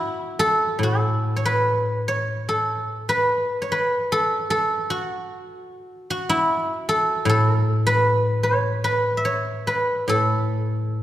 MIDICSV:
0, 0, Header, 1, 2, 480
1, 0, Start_track
1, 0, Tempo, 862069
1, 453, Time_signature, 4, 2, 24, 8
1, 923, Tempo, 825309
1, 1883, Tempo, 798935
1, 3803, Tempo, 781250
1, 5243, Tempo, 823045
1, 6515, End_track
2, 0, Start_track
2, 0, Title_t, "Guzheng"
2, 0, Program_c, 0, 107
2, 0, Note_on_c, 0, 64, 100
2, 0, Note_on_c, 0, 66, 90
2, 219, Note_on_c, 0, 69, 102
2, 438, Note_on_c, 0, 45, 47
2, 461, Note_off_c, 0, 69, 0
2, 463, Note_on_c, 0, 69, 69
2, 760, Note_on_c, 0, 73, 53
2, 810, Note_on_c, 0, 71, 76
2, 1067, Note_off_c, 0, 66, 0
2, 1166, Note_off_c, 0, 73, 0
2, 1169, Note_on_c, 0, 73, 75
2, 1298, Note_off_c, 0, 64, 0
2, 1403, Note_off_c, 0, 69, 0
2, 1405, Note_on_c, 0, 69, 73
2, 1753, Note_off_c, 0, 71, 0
2, 1756, Note_on_c, 0, 71, 74
2, 1876, Note_off_c, 0, 45, 0
2, 2066, Note_off_c, 0, 73, 0
2, 2069, Note_on_c, 0, 73, 51
2, 2126, Note_off_c, 0, 71, 0
2, 2129, Note_on_c, 0, 71, 73
2, 2369, Note_off_c, 0, 69, 0
2, 2371, Note_on_c, 0, 69, 84
2, 2598, Note_off_c, 0, 69, 0
2, 2601, Note_on_c, 0, 69, 78
2, 2840, Note_on_c, 0, 66, 75
2, 3214, Note_off_c, 0, 73, 0
2, 3358, Note_off_c, 0, 71, 0
2, 3560, Note_off_c, 0, 66, 0
2, 3563, Note_on_c, 0, 66, 75
2, 3677, Note_on_c, 0, 64, 80
2, 3923, Note_off_c, 0, 69, 0
2, 4039, Note_on_c, 0, 69, 83
2, 4263, Note_on_c, 0, 45, 66
2, 4286, Note_off_c, 0, 69, 0
2, 4289, Note_on_c, 0, 69, 85
2, 4639, Note_on_c, 0, 71, 78
2, 4989, Note_on_c, 0, 73, 72
2, 5051, Note_off_c, 0, 66, 0
2, 5237, Note_off_c, 0, 71, 0
2, 5239, Note_on_c, 0, 71, 79
2, 5276, Note_off_c, 0, 64, 0
2, 5432, Note_on_c, 0, 76, 54
2, 5475, Note_off_c, 0, 73, 0
2, 5477, Note_on_c, 0, 73, 67
2, 5618, Note_off_c, 0, 69, 0
2, 5716, Note_off_c, 0, 45, 0
2, 5721, Note_off_c, 0, 71, 0
2, 5724, Note_on_c, 0, 71, 66
2, 5960, Note_on_c, 0, 45, 52
2, 5969, Note_on_c, 0, 69, 67
2, 6437, Note_off_c, 0, 76, 0
2, 6515, Note_off_c, 0, 45, 0
2, 6515, Note_off_c, 0, 69, 0
2, 6515, Note_off_c, 0, 71, 0
2, 6515, Note_off_c, 0, 73, 0
2, 6515, End_track
0, 0, End_of_file